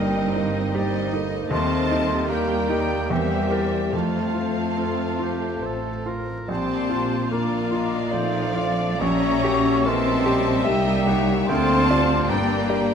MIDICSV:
0, 0, Header, 1, 12, 480
1, 0, Start_track
1, 0, Key_signature, -2, "major"
1, 0, Tempo, 782269
1, 928, Time_signature, 3, 2, 24, 8
1, 1903, Tempo, 847458
1, 3823, Tempo, 814111
1, 4783, Tempo, 891530
1, 5263, Tempo, 837989
1, 5743, Tempo, 811908
1, 7570, End_track
2, 0, Start_track
2, 0, Title_t, "Flute section"
2, 0, Program_c, 0, 73
2, 0, Note_on_c, 0, 79, 61
2, 686, Note_off_c, 0, 79, 0
2, 926, Note_on_c, 0, 84, 86
2, 1386, Note_off_c, 0, 84, 0
2, 1412, Note_on_c, 0, 82, 66
2, 1898, Note_on_c, 0, 79, 57
2, 1903, Note_off_c, 0, 82, 0
2, 2363, Note_off_c, 0, 79, 0
2, 2365, Note_on_c, 0, 81, 57
2, 3577, Note_off_c, 0, 81, 0
2, 3827, Note_on_c, 0, 84, 69
2, 4288, Note_off_c, 0, 84, 0
2, 4309, Note_on_c, 0, 82, 57
2, 4782, Note_on_c, 0, 77, 62
2, 4783, Note_off_c, 0, 82, 0
2, 5253, Note_off_c, 0, 77, 0
2, 5265, Note_on_c, 0, 85, 78
2, 5745, Note_off_c, 0, 85, 0
2, 5756, Note_on_c, 0, 84, 88
2, 6219, Note_on_c, 0, 79, 88
2, 6223, Note_off_c, 0, 84, 0
2, 6708, Note_off_c, 0, 79, 0
2, 6711, Note_on_c, 0, 84, 100
2, 7184, Note_off_c, 0, 84, 0
2, 7186, Note_on_c, 0, 82, 75
2, 7570, Note_off_c, 0, 82, 0
2, 7570, End_track
3, 0, Start_track
3, 0, Title_t, "Violin section"
3, 0, Program_c, 1, 48
3, 0, Note_on_c, 1, 75, 54
3, 669, Note_off_c, 1, 75, 0
3, 929, Note_on_c, 1, 81, 75
3, 1387, Note_off_c, 1, 81, 0
3, 1416, Note_on_c, 1, 79, 49
3, 1896, Note_off_c, 1, 79, 0
3, 1904, Note_on_c, 1, 76, 56
3, 2366, Note_off_c, 1, 76, 0
3, 2379, Note_on_c, 1, 77, 54
3, 3584, Note_off_c, 1, 77, 0
3, 3824, Note_on_c, 1, 81, 61
3, 4286, Note_off_c, 1, 81, 0
3, 4312, Note_on_c, 1, 77, 49
3, 4785, Note_off_c, 1, 77, 0
3, 4786, Note_on_c, 1, 74, 63
3, 5265, Note_off_c, 1, 74, 0
3, 5273, Note_on_c, 1, 82, 73
3, 5741, Note_on_c, 1, 81, 77
3, 5748, Note_off_c, 1, 82, 0
3, 6206, Note_off_c, 1, 81, 0
3, 6216, Note_on_c, 1, 76, 77
3, 6717, Note_off_c, 1, 76, 0
3, 6720, Note_on_c, 1, 81, 95
3, 7179, Note_off_c, 1, 81, 0
3, 7192, Note_on_c, 1, 79, 68
3, 7570, Note_off_c, 1, 79, 0
3, 7570, End_track
4, 0, Start_track
4, 0, Title_t, "Clarinet"
4, 0, Program_c, 2, 71
4, 0, Note_on_c, 2, 70, 44
4, 216, Note_on_c, 2, 72, 55
4, 225, Note_off_c, 2, 70, 0
4, 460, Note_on_c, 2, 74, 57
4, 469, Note_off_c, 2, 72, 0
4, 695, Note_on_c, 2, 75, 68
4, 704, Note_off_c, 2, 74, 0
4, 1412, Note_on_c, 2, 77, 54
4, 1421, Note_off_c, 2, 75, 0
4, 1650, Note_off_c, 2, 77, 0
4, 1654, Note_on_c, 2, 79, 66
4, 1904, Note_on_c, 2, 76, 60
4, 1912, Note_off_c, 2, 79, 0
4, 2137, Note_on_c, 2, 74, 53
4, 2146, Note_off_c, 2, 76, 0
4, 2372, Note_on_c, 2, 72, 46
4, 2380, Note_off_c, 2, 74, 0
4, 3580, Note_off_c, 2, 72, 0
4, 4313, Note_on_c, 2, 74, 50
4, 4551, Note_on_c, 2, 75, 58
4, 4559, Note_off_c, 2, 74, 0
4, 4783, Note_on_c, 2, 74, 64
4, 4791, Note_off_c, 2, 75, 0
4, 5262, Note_off_c, 2, 74, 0
4, 5265, Note_on_c, 2, 73, 65
4, 5748, Note_on_c, 2, 75, 68
4, 5756, Note_off_c, 2, 73, 0
4, 6212, Note_on_c, 2, 76, 73
4, 6221, Note_off_c, 2, 75, 0
4, 6459, Note_on_c, 2, 78, 70
4, 6468, Note_off_c, 2, 76, 0
4, 6704, Note_off_c, 2, 78, 0
4, 6707, Note_on_c, 2, 79, 81
4, 6950, Note_on_c, 2, 77, 72
4, 6959, Note_off_c, 2, 79, 0
4, 7186, Note_on_c, 2, 74, 58
4, 7195, Note_off_c, 2, 77, 0
4, 7419, Note_on_c, 2, 70, 65
4, 7428, Note_off_c, 2, 74, 0
4, 7570, Note_off_c, 2, 70, 0
4, 7570, End_track
5, 0, Start_track
5, 0, Title_t, "Violin section"
5, 0, Program_c, 3, 48
5, 0, Note_on_c, 3, 67, 52
5, 0, Note_on_c, 3, 75, 43
5, 218, Note_on_c, 3, 72, 52
5, 221, Note_off_c, 3, 67, 0
5, 439, Note_off_c, 3, 75, 0
5, 458, Note_on_c, 3, 75, 54
5, 919, Note_off_c, 3, 75, 0
5, 925, Note_on_c, 3, 70, 49
5, 926, Note_on_c, 3, 75, 52
5, 927, Note_off_c, 3, 72, 0
5, 1400, Note_off_c, 3, 75, 0
5, 1410, Note_on_c, 3, 74, 48
5, 1897, Note_off_c, 3, 70, 0
5, 1900, Note_on_c, 3, 72, 46
5, 1903, Note_off_c, 3, 74, 0
5, 1904, Note_on_c, 3, 70, 51
5, 2365, Note_off_c, 3, 70, 0
5, 2365, Note_off_c, 3, 72, 0
5, 2372, Note_on_c, 3, 72, 38
5, 2375, Note_on_c, 3, 69, 40
5, 3681, Note_off_c, 3, 72, 0
5, 3705, Note_off_c, 3, 69, 0
5, 3827, Note_on_c, 3, 65, 45
5, 3830, Note_on_c, 3, 74, 37
5, 4289, Note_off_c, 3, 74, 0
5, 4316, Note_on_c, 3, 74, 46
5, 4778, Note_off_c, 3, 74, 0
5, 4786, Note_on_c, 3, 77, 54
5, 5243, Note_off_c, 3, 65, 0
5, 5265, Note_off_c, 3, 77, 0
5, 5266, Note_on_c, 3, 76, 52
5, 5270, Note_on_c, 3, 67, 49
5, 5734, Note_off_c, 3, 76, 0
5, 5737, Note_off_c, 3, 67, 0
5, 5738, Note_on_c, 3, 66, 58
5, 5741, Note_on_c, 3, 76, 61
5, 6206, Note_off_c, 3, 76, 0
5, 6214, Note_off_c, 3, 66, 0
5, 6214, Note_on_c, 3, 64, 64
5, 6214, Note_on_c, 3, 75, 70
5, 6463, Note_off_c, 3, 75, 0
5, 6469, Note_on_c, 3, 73, 67
5, 6714, Note_off_c, 3, 73, 0
5, 6714, Note_on_c, 3, 74, 58
5, 6716, Note_off_c, 3, 64, 0
5, 6717, Note_on_c, 3, 65, 53
5, 7178, Note_off_c, 3, 65, 0
5, 7178, Note_off_c, 3, 74, 0
5, 7184, Note_on_c, 3, 67, 52
5, 7185, Note_on_c, 3, 74, 56
5, 7570, Note_off_c, 3, 67, 0
5, 7570, Note_off_c, 3, 74, 0
5, 7570, End_track
6, 0, Start_track
6, 0, Title_t, "Oboe"
6, 0, Program_c, 4, 68
6, 0, Note_on_c, 4, 63, 45
6, 913, Note_off_c, 4, 63, 0
6, 930, Note_on_c, 4, 65, 49
6, 1418, Note_on_c, 4, 67, 50
6, 1427, Note_off_c, 4, 65, 0
6, 1904, Note_off_c, 4, 67, 0
6, 1907, Note_on_c, 4, 67, 43
6, 2207, Note_off_c, 4, 67, 0
6, 2381, Note_on_c, 4, 65, 41
6, 2788, Note_off_c, 4, 65, 0
6, 2871, Note_on_c, 4, 65, 46
6, 3108, Note_on_c, 4, 67, 41
6, 3117, Note_off_c, 4, 65, 0
6, 3354, Note_on_c, 4, 69, 46
6, 3363, Note_off_c, 4, 67, 0
6, 3591, Note_on_c, 4, 70, 49
6, 3600, Note_off_c, 4, 69, 0
6, 3826, Note_off_c, 4, 70, 0
6, 3829, Note_on_c, 4, 72, 44
6, 4315, Note_on_c, 4, 74, 47
6, 4324, Note_off_c, 4, 72, 0
6, 4547, Note_off_c, 4, 74, 0
6, 4550, Note_on_c, 4, 74, 45
6, 4782, Note_off_c, 4, 74, 0
6, 4787, Note_on_c, 4, 72, 55
6, 5017, Note_off_c, 4, 72, 0
6, 5025, Note_on_c, 4, 74, 61
6, 5268, Note_on_c, 4, 76, 63
6, 5276, Note_off_c, 4, 74, 0
6, 6619, Note_off_c, 4, 76, 0
6, 6719, Note_on_c, 4, 77, 62
6, 7190, Note_on_c, 4, 79, 63
6, 7199, Note_off_c, 4, 77, 0
6, 7570, Note_off_c, 4, 79, 0
6, 7570, End_track
7, 0, Start_track
7, 0, Title_t, "Grand piano"
7, 0, Program_c, 5, 0
7, 0, Control_c, 5, 64, 127
7, 0, Note_on_c, 5, 43, 48
7, 0, Note_on_c, 5, 58, 44
7, 0, Note_on_c, 5, 63, 45
7, 132, Note_off_c, 5, 63, 0
7, 220, Note_on_c, 5, 63, 48
7, 366, Note_off_c, 5, 58, 0
7, 459, Note_on_c, 5, 67, 48
7, 598, Note_off_c, 5, 63, 0
7, 691, Note_on_c, 5, 63, 50
7, 834, Note_off_c, 5, 67, 0
7, 905, Note_off_c, 5, 43, 0
7, 924, Note_on_c, 5, 39, 61
7, 928, Note_off_c, 5, 63, 0
7, 939, Control_c, 5, 64, 0
7, 1041, Control_c, 5, 64, 127
7, 1172, Note_on_c, 5, 63, 50
7, 1408, Note_on_c, 5, 58, 48
7, 1558, Note_off_c, 5, 63, 0
7, 1652, Note_on_c, 5, 63, 48
7, 1800, Note_off_c, 5, 58, 0
7, 1876, Note_off_c, 5, 39, 0
7, 1902, Note_off_c, 5, 63, 0
7, 1904, Note_on_c, 5, 40, 57
7, 1915, Control_c, 5, 64, 0
7, 2006, Control_c, 5, 64, 127
7, 2136, Note_on_c, 5, 70, 42
7, 2139, Note_on_c, 5, 67, 38
7, 2351, Note_off_c, 5, 70, 0
7, 2352, Note_off_c, 5, 67, 0
7, 2361, Note_off_c, 5, 40, 0
7, 2371, Note_on_c, 5, 41, 46
7, 2384, Control_c, 5, 64, 0
7, 2493, Control_c, 5, 64, 127
7, 2602, Note_on_c, 5, 65, 41
7, 2847, Note_on_c, 5, 60, 38
7, 2998, Note_off_c, 5, 65, 0
7, 3086, Note_on_c, 5, 65, 37
7, 3241, Note_off_c, 5, 60, 0
7, 3332, Note_on_c, 5, 72, 39
7, 3478, Note_off_c, 5, 65, 0
7, 3578, Note_on_c, 5, 65, 36
7, 3723, Note_off_c, 5, 72, 0
7, 3799, Note_off_c, 5, 41, 0
7, 3819, Note_on_c, 5, 34, 48
7, 3822, Note_off_c, 5, 65, 0
7, 3835, Control_c, 5, 64, 0
7, 3951, Control_c, 5, 64, 127
7, 4061, Note_on_c, 5, 65, 43
7, 4308, Note_on_c, 5, 58, 44
7, 4446, Note_off_c, 5, 65, 0
7, 4542, Note_on_c, 5, 65, 44
7, 4686, Note_off_c, 5, 58, 0
7, 4779, Note_on_c, 5, 74, 54
7, 4921, Note_off_c, 5, 65, 0
7, 5013, Note_on_c, 5, 65, 48
7, 5165, Note_off_c, 5, 74, 0
7, 5239, Note_off_c, 5, 34, 0
7, 5260, Note_off_c, 5, 65, 0
7, 5263, Note_on_c, 5, 34, 60
7, 5275, Control_c, 5, 64, 0
7, 5365, Control_c, 5, 64, 127
7, 5510, Note_on_c, 5, 67, 58
7, 5743, Note_on_c, 5, 58, 53
7, 5887, Note_off_c, 5, 67, 0
7, 5984, Note_on_c, 5, 67, 59
7, 6122, Note_off_c, 5, 58, 0
7, 6192, Note_off_c, 5, 34, 0
7, 6214, Note_on_c, 5, 76, 65
7, 6364, Note_off_c, 5, 67, 0
7, 6466, Note_on_c, 5, 67, 55
7, 6617, Note_off_c, 5, 76, 0
7, 6713, Note_on_c, 5, 38, 65
7, 6718, Note_off_c, 5, 67, 0
7, 6728, Control_c, 5, 64, 0
7, 6808, Control_c, 5, 64, 127
7, 6952, Note_on_c, 5, 65, 53
7, 6959, Note_on_c, 5, 74, 61
7, 7162, Note_off_c, 5, 65, 0
7, 7166, Note_off_c, 5, 74, 0
7, 7171, Note_off_c, 5, 38, 0
7, 7188, Note_on_c, 5, 43, 64
7, 7199, Control_c, 5, 64, 0
7, 7279, Control_c, 5, 64, 127
7, 7423, Note_on_c, 5, 67, 45
7, 7426, Note_on_c, 5, 74, 54
7, 7570, Note_off_c, 5, 43, 0
7, 7570, Note_off_c, 5, 67, 0
7, 7570, Note_off_c, 5, 74, 0
7, 7570, End_track
8, 0, Start_track
8, 0, Title_t, "Viola section"
8, 0, Program_c, 6, 48
8, 0, Note_on_c, 6, 60, 51
8, 0, Note_on_c, 6, 63, 42
8, 458, Note_off_c, 6, 60, 0
8, 463, Note_on_c, 6, 58, 57
8, 693, Note_on_c, 6, 57, 51
8, 695, Note_off_c, 6, 58, 0
8, 902, Note_off_c, 6, 63, 0
8, 923, Note_on_c, 6, 63, 52
8, 926, Note_on_c, 6, 55, 46
8, 928, Note_off_c, 6, 57, 0
8, 1161, Note_off_c, 6, 63, 0
8, 1166, Note_on_c, 6, 67, 53
8, 1400, Note_off_c, 6, 55, 0
8, 1408, Note_on_c, 6, 55, 56
8, 1647, Note_off_c, 6, 55, 0
8, 1650, Note_on_c, 6, 58, 54
8, 1896, Note_off_c, 6, 67, 0
8, 1901, Note_off_c, 6, 58, 0
8, 1903, Note_on_c, 6, 60, 47
8, 1903, Note_on_c, 6, 67, 48
8, 2365, Note_off_c, 6, 67, 0
8, 2367, Note_off_c, 6, 60, 0
8, 2373, Note_on_c, 6, 60, 39
8, 2376, Note_on_c, 6, 65, 46
8, 3682, Note_off_c, 6, 60, 0
8, 3705, Note_off_c, 6, 65, 0
8, 3819, Note_on_c, 6, 58, 42
8, 3820, Note_on_c, 6, 67, 41
8, 4283, Note_off_c, 6, 58, 0
8, 4284, Note_off_c, 6, 67, 0
8, 4307, Note_on_c, 6, 65, 49
8, 4309, Note_on_c, 6, 62, 53
8, 4540, Note_off_c, 6, 62, 0
8, 4546, Note_on_c, 6, 62, 53
8, 4780, Note_off_c, 6, 62, 0
8, 4782, Note_off_c, 6, 65, 0
8, 4785, Note_on_c, 6, 60, 53
8, 4786, Note_on_c, 6, 63, 54
8, 5018, Note_on_c, 6, 62, 55
8, 5021, Note_off_c, 6, 63, 0
8, 5263, Note_off_c, 6, 62, 0
8, 5263, Note_on_c, 6, 58, 50
8, 5263, Note_on_c, 6, 61, 58
8, 5264, Note_off_c, 6, 60, 0
8, 5504, Note_off_c, 6, 58, 0
8, 5511, Note_on_c, 6, 58, 63
8, 5740, Note_off_c, 6, 58, 0
8, 5741, Note_on_c, 6, 57, 72
8, 5980, Note_off_c, 6, 57, 0
8, 5981, Note_on_c, 6, 55, 64
8, 6197, Note_off_c, 6, 61, 0
8, 6212, Note_on_c, 6, 63, 65
8, 6708, Note_on_c, 6, 62, 54
8, 6712, Note_on_c, 6, 58, 60
8, 6715, Note_off_c, 6, 63, 0
8, 6717, Note_off_c, 6, 55, 0
8, 6947, Note_off_c, 6, 58, 0
8, 6950, Note_on_c, 6, 60, 66
8, 7178, Note_off_c, 6, 62, 0
8, 7185, Note_off_c, 6, 60, 0
8, 7185, Note_on_c, 6, 62, 56
8, 7186, Note_off_c, 6, 62, 0
8, 7186, Note_on_c, 6, 62, 66
8, 7424, Note_off_c, 6, 62, 0
8, 7424, Note_on_c, 6, 58, 66
8, 7570, Note_off_c, 6, 58, 0
8, 7570, End_track
9, 0, Start_track
9, 0, Title_t, "Cello section"
9, 0, Program_c, 7, 48
9, 0, Note_on_c, 7, 55, 55
9, 669, Note_off_c, 7, 55, 0
9, 927, Note_on_c, 7, 60, 66
9, 1386, Note_off_c, 7, 60, 0
9, 1411, Note_on_c, 7, 58, 53
9, 1902, Note_on_c, 7, 55, 54
9, 1903, Note_off_c, 7, 58, 0
9, 2373, Note_on_c, 7, 57, 50
9, 2374, Note_off_c, 7, 55, 0
9, 3558, Note_off_c, 7, 57, 0
9, 3828, Note_on_c, 7, 60, 57
9, 4288, Note_off_c, 7, 60, 0
9, 4311, Note_on_c, 7, 58, 49
9, 4784, Note_off_c, 7, 58, 0
9, 4785, Note_on_c, 7, 53, 63
9, 5254, Note_off_c, 7, 53, 0
9, 5261, Note_on_c, 7, 61, 73
9, 5742, Note_off_c, 7, 61, 0
9, 5742, Note_on_c, 7, 60, 75
9, 6216, Note_off_c, 7, 60, 0
9, 6218, Note_on_c, 7, 55, 73
9, 6714, Note_on_c, 7, 60, 83
9, 6718, Note_off_c, 7, 55, 0
9, 7183, Note_on_c, 7, 58, 66
9, 7186, Note_off_c, 7, 60, 0
9, 7570, Note_off_c, 7, 58, 0
9, 7570, End_track
10, 0, Start_track
10, 0, Title_t, "French horn section"
10, 0, Program_c, 8, 60
10, 0, Note_on_c, 8, 55, 51
10, 674, Note_off_c, 8, 55, 0
10, 931, Note_on_c, 8, 60, 79
10, 1388, Note_off_c, 8, 60, 0
10, 1414, Note_on_c, 8, 58, 61
10, 1902, Note_on_c, 8, 55, 54
10, 1904, Note_off_c, 8, 58, 0
10, 2374, Note_off_c, 8, 55, 0
10, 2377, Note_on_c, 8, 57, 58
10, 3583, Note_off_c, 8, 57, 0
10, 3831, Note_on_c, 8, 60, 62
10, 4289, Note_off_c, 8, 60, 0
10, 4320, Note_on_c, 8, 58, 51
10, 4788, Note_off_c, 8, 58, 0
10, 4795, Note_on_c, 8, 53, 58
10, 5266, Note_on_c, 8, 61, 75
10, 5269, Note_off_c, 8, 53, 0
10, 5735, Note_off_c, 8, 61, 0
10, 5753, Note_on_c, 8, 60, 79
10, 6216, Note_on_c, 8, 55, 76
10, 6221, Note_off_c, 8, 60, 0
10, 6717, Note_off_c, 8, 55, 0
10, 6726, Note_on_c, 8, 60, 92
10, 7089, Note_off_c, 8, 60, 0
10, 7190, Note_on_c, 8, 58, 66
10, 7570, Note_off_c, 8, 58, 0
10, 7570, End_track
11, 0, Start_track
11, 0, Title_t, "Bassoon"
11, 0, Program_c, 10, 70
11, 0, Note_on_c, 10, 55, 52
11, 225, Note_on_c, 10, 58, 54
11, 235, Note_off_c, 10, 55, 0
11, 455, Note_on_c, 10, 60, 56
11, 464, Note_off_c, 10, 58, 0
11, 695, Note_on_c, 10, 58, 54
11, 704, Note_off_c, 10, 60, 0
11, 927, Note_on_c, 10, 57, 53
11, 936, Note_off_c, 10, 58, 0
11, 1411, Note_on_c, 10, 55, 53
11, 1420, Note_off_c, 10, 57, 0
11, 1652, Note_off_c, 10, 55, 0
11, 1656, Note_on_c, 10, 55, 57
11, 1904, Note_on_c, 10, 58, 48
11, 1912, Note_off_c, 10, 55, 0
11, 2212, Note_off_c, 10, 58, 0
11, 2377, Note_on_c, 10, 57, 43
11, 3612, Note_off_c, 10, 57, 0
11, 3831, Note_on_c, 10, 55, 48
11, 4074, Note_on_c, 10, 53, 45
11, 4082, Note_off_c, 10, 55, 0
11, 4317, Note_on_c, 10, 58, 45
11, 4326, Note_off_c, 10, 53, 0
11, 4788, Note_on_c, 10, 57, 54
11, 4796, Note_off_c, 10, 58, 0
11, 5260, Note_off_c, 10, 57, 0
11, 5264, Note_on_c, 10, 55, 60
11, 5511, Note_on_c, 10, 54, 62
11, 5520, Note_off_c, 10, 55, 0
11, 5749, Note_on_c, 10, 52, 64
11, 5757, Note_off_c, 10, 54, 0
11, 5981, Note_off_c, 10, 52, 0
11, 5985, Note_on_c, 10, 55, 67
11, 6223, Note_on_c, 10, 58, 65
11, 6232, Note_off_c, 10, 55, 0
11, 6716, Note_off_c, 10, 58, 0
11, 6719, Note_on_c, 10, 57, 67
11, 6958, Note_on_c, 10, 55, 56
11, 6967, Note_off_c, 10, 57, 0
11, 7570, Note_off_c, 10, 55, 0
11, 7570, End_track
12, 0, Start_track
12, 0, Title_t, "Double bass section"
12, 0, Program_c, 11, 48
12, 0, Note_on_c, 11, 31, 50
12, 928, Note_on_c, 11, 39, 56
12, 930, Note_off_c, 11, 31, 0
12, 1883, Note_off_c, 11, 39, 0
12, 1902, Note_on_c, 11, 40, 50
12, 2373, Note_on_c, 11, 41, 45
12, 2374, Note_off_c, 11, 40, 0
12, 3340, Note_off_c, 11, 41, 0
12, 3343, Note_on_c, 11, 33, 36
12, 3698, Note_off_c, 11, 33, 0
12, 3828, Note_on_c, 11, 34, 48
12, 5244, Note_off_c, 11, 34, 0
12, 5270, Note_on_c, 11, 34, 65
12, 6200, Note_off_c, 11, 34, 0
12, 6221, Note_on_c, 11, 36, 60
12, 6719, Note_off_c, 11, 36, 0
12, 6719, Note_on_c, 11, 38, 67
12, 7179, Note_off_c, 11, 38, 0
12, 7191, Note_on_c, 11, 31, 62
12, 7570, Note_off_c, 11, 31, 0
12, 7570, End_track
0, 0, End_of_file